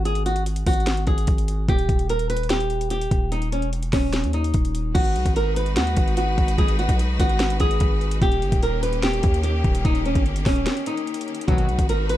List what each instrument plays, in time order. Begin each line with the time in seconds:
Already playing: 808-style bass G#1
0.05 nylon-string guitar G#4, closed hi-hat
0.15 closed hi-hat
0.26 nylon-string guitar F#4, closed hi-hat
0.36 closed hi-hat
0.46 closed hi-hat
0.56 closed hi-hat
0.66 808-style bass G#1, nylon-string guitar F#4, kick, closed hi-hat, open hi-hat
0.73 closed hi-hat
0.80 closed hi-hat
0.86 snare, closed hi-hat
0.97 closed hi-hat
1.07 808-style bass G#1, nylon-string guitar G#4, kick, closed hi-hat
1.18 closed hi-hat
1.27 808-style bass G#1, kick, closed hi-hat
1.38 closed hi-hat
1.48 closed hi-hat
1.69 808-style bass D#1, nylon-string guitar G4, kick, closed hi-hat
1.79 closed hi-hat
1.89 808-style bass D#1, kick, closed hi-hat
1.99 closed hi-hat
2.09 nylon-string guitar A#4, closed hi-hat
2.19 closed hi-hat
2.30 nylon-string guitar B4, closed hi-hat
2.37 closed hi-hat
2.43 closed hi-hat
2.50 nylon-string guitar G4, snare, closed hi-hat
2.60 closed hi-hat
2.70 closed hi-hat
2.81 closed hi-hat
2.90 nylon-string guitar G4, closed hi-hat
3.01 closed hi-hat
3.11 808-style bass D#1, kick, closed hi-hat
3.32 nylon-string guitar D#4, closed hi-hat
3.42 closed hi-hat
3.52 nylon-string guitar C#4, closed hi-hat
3.62 808-style bass E1, closed hi-hat
3.73 closed hi-hat
3.83 closed hi-hat
3.93 808-style bass D#1, nylon-string guitar C#4, kick, snare, open hi-hat
4.13 snare, closed hi-hat
4.24 808-style bass D#2, closed hi-hat
4.33 nylon-string guitar D#4, closed hi-hat
4.44 closed hi-hat
4.54 808-style bass D#1, kick, closed hi-hat
4.65 closed hi-hat
4.75 closed hi-hat
4.95 808-style bass G#1, string section G#3 D#4 F#4 B4, nylon-string guitar F#4, kick, closed hi-hat, crash
5.05 closed hi-hat
5.15 808-style bass B1, closed hi-hat
5.26 808-style bass G#1, kick, closed hi-hat
5.36 nylon-string guitar A#4, closed hi-hat
5.56 nylon-string guitar B4, closed hi-hat
5.66 closed hi-hat
5.76 808-style bass D#2, nylon-string guitar F#4, snare, closed hi-hat
5.87 closed hi-hat
5.96 808-style bass G#1, kick, closed hi-hat
6.08 closed hi-hat
6.17 nylon-string guitar F#4, closed hi-hat
6.38 808-style bass G#1, kick, closed hi-hat
6.48 closed hi-hat
6.58 808-style bass G#1, nylon-string guitar G#4, kick, closed hi-hat
6.68 closed hi-hat
6.79 nylon-string guitar F#4, closed hi-hat
6.89 808-style bass B1, kick, closed hi-hat
6.99 closed hi-hat
7.20 808-style bass G#1, nylon-string guitar F#4, kick, closed hi-hat
7.29 closed hi-hat
7.39 snare, closed hi-hat
7.50 closed hi-hat
7.60 808-style bass G#1, nylon-string guitar G#4, kick, closed hi-hat
7.71 closed hi-hat
7.80 808-style bass G#1, kick, closed hi-hat
8.01 closed hi-hat
8.11 closed hi-hat
8.22 808-style bass D#1, string section D#3 A#3 C#4 G4, nylon-string guitar G4, kick, closed hi-hat
8.32 closed hi-hat
8.42 808-style bass G1, closed hi-hat
8.52 808-style bass D#1, kick, closed hi-hat
8.63 nylon-string guitar A#4, closed hi-hat
8.83 nylon-string guitar B4, closed hi-hat
8.93 closed hi-hat
9.03 nylon-string guitar G4, snare, closed hi-hat
9.13 closed hi-hat
9.23 808-style bass D#2, kick, closed hi-hat
9.34 closed hi-hat
9.43 nylon-string guitar G4, closed hi-hat
9.64 808-style bass D#1, kick, closed hi-hat
9.75 closed hi-hat
9.85 808-style bass D#1, nylon-string guitar D#4, kick, closed hi-hat
9.95 closed hi-hat
10.05 nylon-string guitar C#4, closed hi-hat
10.15 808-style bass G1, kick, closed hi-hat
10.26 closed hi-hat
10.36 closed hi-hat
10.46 808-style bass D#1, nylon-string guitar C#4, kick, snare, open hi-hat
10.56 closed hi-hat
10.66 snare, closed hi-hat
10.77 closed hi-hat
10.86 nylon-string guitar D#4, closed hi-hat
10.97 closed hi-hat
11.07 closed hi-hat
11.14 closed hi-hat
11.21 closed hi-hat
11.28 closed hi-hat
11.35 closed hi-hat
11.41 closed hi-hat
11.48 808-style bass G#1, analog polysynth D#2 B2 F#3, string section G#3 D#4 F#4 B4, nylon-string guitar F#4, kick, closed hi-hat
11.58 closed hi-hat
11.69 808-style bass B1, closed hi-hat
11.79 808-style bass G#1, kick, closed hi-hat
11.89 nylon-string guitar A#4, closed hi-hat
12.09 nylon-string guitar B4, closed hi-hat